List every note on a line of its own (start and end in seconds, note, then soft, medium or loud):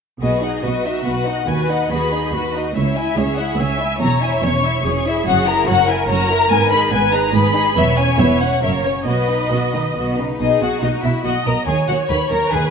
0.21 0.56 B1 medium
0.21 0.56 B2 medium
0.21 0.41 F#4 soft
0.21 0.60 G#4 soft
0.21 0.41 B4 soft
0.21 0.41 D#5 medium
0.42 0.63 D#4 soft
0.42 0.63 D#5 soft
0.42 0.50 F#5 medium
0.63 0.98 B1 medium
0.63 0.99 B2 medium
0.63 0.84 F#4 soft
0.63 1.48 F#4 soft
0.63 0.85 B4 soft
0.63 0.84 D#5 medium
0.84 1.06 D#4 soft
0.84 1.06 D#5 soft
0.84 1.05 E5 medium
1.05 1.40 B1 medium
1.05 1.41 B2 medium
1.05 1.25 F#4 soft
1.05 1.25 B4 soft
1.05 1.48 F#5 medium
1.26 1.47 D#4 soft
1.26 1.47 D#5 soft
1.47 1.84 D#2 medium
1.47 1.68 F#4 soft
1.47 1.90 B4 medium
1.47 1.68 B4 soft
1.47 1.69 G#5 medium
1.69 1.92 D#4 soft
1.69 1.91 D#5 soft
1.69 1.91 F#5 medium
1.91 2.27 D#2 medium
1.91 2.13 F#4 soft
1.91 2.33 G#4 medium
1.91 2.13 B4 soft
1.91 2.53 B5 medium
2.12 2.33 D#4 soft
2.12 2.34 D#5 soft
2.33 2.69 D#2 medium
2.33 2.69 D#2 soft
2.33 2.76 F#4 soft
2.33 2.54 F#4 soft
2.33 2.53 B4 soft
2.55 2.76 D#4 soft
2.55 2.76 D#5 soft
2.75 3.11 C#2 medium
2.75 2.96 C#4 soft
2.75 3.17 E4 soft
2.75 2.95 C#5 soft
2.75 2.95 E5 medium
2.96 3.18 E4 soft
2.96 3.18 E5 soft
2.96 3.17 G#5 medium
3.17 3.52 C#2 medium
3.17 3.53 C#2 medium
3.17 3.38 C#4 soft
3.17 3.59 G#4 soft
3.17 3.38 C#5 soft
3.17 3.38 E5 medium
3.38 3.59 E4 soft
3.38 3.59 E5 soft
3.38 3.59 F#5 medium
3.59 3.94 C#2 medium
3.59 3.79 C#4 soft
3.59 3.79 C#5 soft
3.59 4.01 E5 medium
3.59 4.01 G#5 medium
3.80 4.01 E4 soft
3.80 4.01 E5 soft
4.00 4.38 E1 medium
4.00 4.37 E2 medium
4.00 4.21 C#4 soft
4.00 4.84 C#5 medium
4.00 4.21 C#5 soft
4.00 4.22 A#5 medium
4.22 4.44 E4 soft
4.22 4.44 E5 soft
4.22 4.30 G#5 medium
4.44 4.79 E1 medium
4.44 4.79 E2 medium
4.44 4.65 C#4 soft
4.44 4.66 C#5 soft
4.44 5.05 C#6 medium
4.65 4.86 E4 soft
4.65 4.86 E5 soft
4.85 5.20 E1 medium
4.85 5.20 E2 medium
4.85 5.05 C#4 soft
4.85 5.66 G#4 medium
4.85 5.05 C#5 soft
5.06 5.27 E4 soft
5.06 5.27 E5 soft
5.26 5.61 F#1 medium
5.26 5.61 F#2 medium
5.26 5.46 F#4 soft
5.26 5.46 C#5 soft
5.26 5.46 F#5 medium
5.46 5.68 E4 soft
5.46 5.67 A#4 medium
5.46 5.68 A#5 medium
5.67 6.02 F#1 medium
5.67 6.02 F#2 medium
5.67 5.88 F#4 medium
5.67 6.93 A#4 medium
5.67 5.88 C#5 medium
5.67 5.88 F#5 medium
5.88 6.09 E4 soft
5.88 6.09 A#4 soft
5.88 6.09 G#5 medium
6.08 6.43 F#1 medium
6.08 6.44 F#2 medium
6.08 6.28 F#4 medium
6.08 6.28 C#5 soft
6.08 6.50 A#5 medium
6.30 6.51 E4 medium
6.30 6.51 A#4 soft
6.50 6.85 G#1 medium
6.50 6.86 G#2 medium
6.50 6.70 B3 medium
6.50 6.70 B4 medium
6.50 6.71 G#5 loud
6.71 6.93 D#4 medium
6.71 6.93 G#4 medium
6.71 6.92 B5 medium
6.92 7.28 G#1 medium
6.92 7.28 G#2 medium
6.92 7.13 B3 medium
6.92 7.13 B4 medium
6.92 7.34 B4 medium
6.92 7.13 G#5 medium
7.13 7.34 D#4 medium
7.13 7.35 G#4 medium
7.13 7.35 A#5 medium
7.34 7.70 G#1 medium
7.34 7.70 G#2 medium
7.34 7.54 B3 medium
7.34 7.76 G#4 medium
7.34 7.54 B4 medium
7.34 7.77 B5 medium
7.55 7.77 D#4 medium
7.55 7.77 G#4 soft
7.77 8.13 E1 medium
7.77 8.12 E2 medium
7.77 7.97 B3 soft
7.77 7.97 B4 soft
7.77 8.62 C#5 medium
7.77 7.98 E5 medium
7.98 8.20 C#4 medium
7.98 8.20 C#5 soft
7.98 8.19 G#5 medium
8.19 8.55 E1 medium
8.19 8.55 E2 medium
8.19 8.41 B3 medium
8.19 8.41 B4 soft
8.19 8.40 E5 medium
8.40 8.62 C#4 soft
8.40 8.62 C#5 soft
8.40 8.62 F#5 medium
8.62 8.99 F#1 medium
8.62 8.99 F#2 medium
8.62 8.83 A#3 soft
8.62 8.83 A#4 soft
8.62 9.06 C#5 medium
8.62 8.70 E5 medium
8.84 9.07 C#4 soft
8.84 9.07 C#5 soft
8.84 8.93 C#5 medium
9.06 9.44 B1 medium
9.06 9.44 B2 medium
9.06 9.28 B3 soft
9.06 9.28 F#4 soft
9.06 9.94 B4 medium
9.06 10.16 D#5 medium
9.29 9.51 D#4 soft
9.29 9.52 B4 soft
9.51 9.89 B1 medium
9.51 9.59 B2 medium
9.51 9.74 B3 soft
9.51 9.74 F#4 soft
9.74 9.82 D#3 soft
9.74 9.96 D#4 soft
9.74 9.96 B4 soft
9.95 10.33 B1 medium
9.95 10.17 B2 soft
9.95 10.17 B3 soft
9.95 10.17 F#4 soft
10.18 10.40 C#3 soft
10.18 10.38 D#4 soft
10.18 10.40 B4 soft
10.40 10.48 B1 medium
10.40 10.48 B2 soft
10.40 10.60 D#4 soft
10.40 10.80 G#4 medium
10.40 10.60 D#5 medium
10.61 10.69 B1 soft
10.61 10.69 B2 soft
10.61 10.82 F#4 medium
10.61 10.71 F#5 medium
10.82 10.90 B1 soft
10.82 10.90 B2 soft
10.82 11.03 D#4 medium
10.82 11.25 F#4 soft
10.82 10.91 D#5 medium
11.03 11.11 B1 soft
11.03 11.11 B2 soft
11.03 11.24 E4 medium
11.03 11.12 E5 medium
11.24 11.32 B1 medium
11.24 11.33 B2 soft
11.24 11.32 F#4 medium
11.24 11.67 D#5 medium
11.24 11.46 F#5 medium
11.45 11.54 B1 soft
11.45 11.54 B2 medium
11.45 11.54 A#4 medium
11.45 11.66 A#5 medium
11.67 11.75 D#2 soft
11.67 11.76 D#3 medium
11.67 11.75 G#4 medium
11.67 12.50 C#5 medium
11.67 11.87 G#5 medium
11.88 11.96 D#2 soft
11.88 11.97 D#3 soft
11.88 11.96 F#4 medium
11.88 11.96 F#5 medium
12.09 12.17 D#2 medium
12.09 12.18 D#3 medium
12.09 12.17 B4 medium
12.09 12.30 B5 medium
12.30 12.39 D#2 medium
12.30 12.39 D#3 soft
12.30 12.51 A#4 medium
12.30 12.51 A#5 medium
12.52 12.60 D#2 medium
12.52 12.60 D#3 medium
12.52 12.70 G#4 medium
12.52 12.70 B4 medium
12.52 12.70 G#5 medium